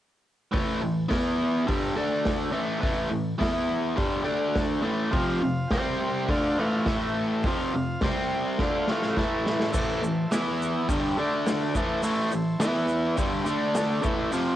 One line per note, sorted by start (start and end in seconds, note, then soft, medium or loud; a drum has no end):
0.52 0.81 A2 medium
0.52 0.81 E3 medium
0.52 0.82 A3 loud
0.52 kick loud
0.52 open hi-hat medium
0.82 1.06 A2 medium
0.82 1.05 E3 medium
1.08 1.67 E3 medium
1.08 1.67 B3 loud
1.08 1.67 E4 medium
1.08 kick loud
1.08 snare loud
1.08 open hi-hat medium
1.67 1.96 G2 medium
1.67 1.95 D3 medium
1.67 1.96 G3 loud
1.67 kick loud
1.67 open hi-hat medium
1.96 2.52 D3 medium
1.96 2.52 A3 medium
1.96 2.53 D4 medium
2.25 kick loud
2.25 snare loud
2.25 open hi-hat soft
2.52 2.79 A2 medium
2.52 2.80 E3 medium
2.52 2.81 A3 medium
2.80 3.09 A2 medium
2.80 3.09 E3 medium
2.80 3.11 A3 medium
2.80 kick loud
2.80 open hi-hat medium
3.10 3.35 A2 medium
3.10 3.35 E3 medium
3.39 3.96 E3 medium
3.39 3.97 B3 medium
3.39 3.98 E4 loud
3.39 kick loud
3.39 snare loud
3.39 open hi-hat medium
3.96 4.26 G2 medium
3.96 4.23 D3 loud
3.96 4.25 G3 loud
3.96 kick loud
3.96 open hi-hat soft
4.24 4.82 D3 medium
4.24 4.82 A3 medium
4.24 4.83 D4 medium
4.56 kick loud
4.56 snare loud
4.56 open hi-hat soft
4.82 5.11 A2 medium
4.82 5.12 E3 medium
4.82 5.12 A3 medium
5.11 5.41 F2 medium
5.11 5.41 C3 loud
5.11 5.41 F3 loud
5.11 5.71 F4 medium
5.11 5.70 C5 medium
5.11 5.71 F5 medium
5.11 kick loud
5.11 open hi-hat medium
5.42 5.66 F2 medium
5.42 5.66 C3 medium
5.68 6.28 C3 medium
5.68 6.29 G3 medium
5.68 6.27 G4 medium
5.68 6.29 C5 medium
5.68 6.29 G5 medium
5.68 kick loud
5.68 snare loud
5.68 open hi-hat medium
5.73 6.29 C4 medium
6.29 6.57 D3 medium
6.29 6.57 A3 medium
6.29 6.58 D4 loud
6.29 6.87 F4 medium
6.29 6.88 C5 medium
6.29 6.87 F5 medium
6.29 kick loud
6.29 open hi-hat medium
6.58 6.86 A2 medium
6.58 6.86 E3 medium
6.58 6.87 A3 loud
6.86 7.44 A2 medium
6.86 7.44 E3 medium
6.86 7.44 A3 loud
6.86 7.45 E4 medium
6.86 7.46 E5 medium
6.86 kick loud
6.86 snare loud
6.86 open hi-hat medium
6.91 7.47 A4 medium
7.42 7.73 F2 medium
7.42 8.01 F4 medium
7.42 8.01 C5 medium
7.42 8.03 F5 medium
7.42 kick loud
7.42 open hi-hat medium
7.46 7.73 C3 loud
7.46 7.73 F3 loud
7.74 7.97 F2 medium
7.74 7.97 C3 medium
8.01 8.59 C3 medium
8.01 8.59 G3 medium
8.01 8.60 C4 medium
8.01 8.60 G4 medium
8.01 8.58 C5 medium
8.01 8.60 G5 medium
8.01 kick loud
8.01 snare loud
8.01 open hi-hat medium
8.58 8.87 D3 medium
8.58 8.88 A3 medium
8.58 8.88 D4 loud
8.58 9.16 F4 medium
8.58 9.17 C5 medium
8.58 9.17 F5 medium
8.58 kick loud
8.58 snare medium
8.87 9.15 A2 medium
8.87 9.16 E3 medium
8.87 9.17 A3 loud
8.87 snare medium
9.02 snare medium
9.14 9.72 A2 medium
9.14 9.73 E3 medium
9.14 9.73 E4 medium
9.14 9.70 A4 medium
9.14 9.71 E5 medium
9.14 kick loud
9.14 snare medium
9.18 9.73 A3 medium
9.46 snare medium
9.60 snare medium
9.71 10.01 A2 medium
9.71 10.01 E3 loud
9.71 10.02 A3 loud
9.71 10.30 A4 medium
9.71 10.31 C5 medium
9.71 10.28 E5 medium
9.71 kick loud
9.71 crash loud
9.71 shaker loud
10.03 10.26 A2 medium
10.03 10.26 E3 medium
10.03 shaker medium
10.28 10.87 E4 medium
10.28 10.88 B4 medium
10.28 10.88 E5 medium
10.32 10.89 E3 medium
10.32 10.89 B3 medium
10.32 10.89 E4 medium
10.32 snare loud
10.32 open hi-hat medium
10.32 shaker loud
10.62 shaker medium
10.89 11.17 G2 medium
10.89 11.17 D3 medium
10.89 11.18 G3 loud
10.89 kick loud
10.89 open hi-hat medium
10.89 shaker medium
11.18 11.74 D3 medium
11.18 11.75 A3 medium
11.18 11.76 D4 medium
11.18 11.75 D4 medium
11.18 11.76 A4 medium
11.18 11.77 D5 medium
11.47 snare loud
11.47 open hi-hat medium
11.47 shaker medium
11.75 12.01 A2 medium
11.75 12.03 E3 medium
11.75 12.03 A3 medium
11.75 12.60 E4 medium
11.75 12.62 A4 medium
11.75 12.62 C5 medium
11.75 kick loud
11.75 shaker medium
12.03 12.30 A2 medium
12.03 12.31 E3 loud
12.03 12.32 A3 loud
12.03 open hi-hat medium
12.03 shaker medium
12.31 12.55 A2 medium
12.31 12.55 E3 medium
12.31 shaker medium
12.60 13.17 E3 medium
12.60 13.18 B3 medium
12.60 13.18 E4 medium
12.60 13.19 E4 medium
12.60 13.19 B4 medium
12.60 13.20 E5 medium
12.60 snare loud
12.60 open hi-hat medium
12.60 shaker medium
12.88 shaker medium
13.17 13.46 G2 medium
13.17 13.43 D3 medium
13.17 13.45 G3 medium
13.17 kick loud
13.17 open hi-hat medium
13.17 shaker medium
13.44 14.02 D3 medium
13.44 14.02 A3 medium
13.44 14.04 D4 medium
13.44 shaker medium
13.49 14.06 D4 medium
13.49 14.06 A4 medium
13.49 14.06 D5 medium
13.75 14.03 A5 medium
13.75 snare loud
13.75 open hi-hat soft
13.75 shaker medium
14.02 14.31 A2 medium
14.02 14.32 E3 medium
14.02 14.32 A3 loud
14.02 14.32 E5 medium
14.02 kick loud
14.02 shaker medium
14.31 14.56 F2 loud
14.31 14.56 C3 loud
14.31 14.56 F3 loud
14.31 14.56 C4 medium
14.31 14.56 F4 medium
14.31 open hi-hat medium
14.31 shaker medium
14.36 14.56 C5 medium